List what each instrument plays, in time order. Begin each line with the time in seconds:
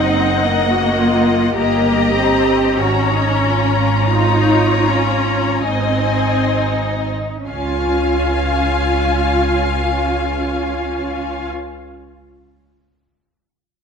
Already playing: double bass section F#1, viola section C4, cello section D#4, violin section D#5 F#5
0.44 viola section A#3
0.72 cello section F#4
1.00 cello section F4
1.57 double bass section G1, viola section A#3, cello section G4, violin section D#5 A#5
2.17 viola section C4
2.78 double bass section G#1, viola section C#4, cello section F#4, violin section C#5 A#5
3.10 cello section D#4
3.42 cello section F4
4.10 viola section D#4, violin section C#5
4.84 viola section C#4
5.64 double bass section G#1, viola section C4, cello section D#4, violin section D#5 G#5
7.48 double bass section C#2, cello section C#4, viola section F4, violin section F5 G#5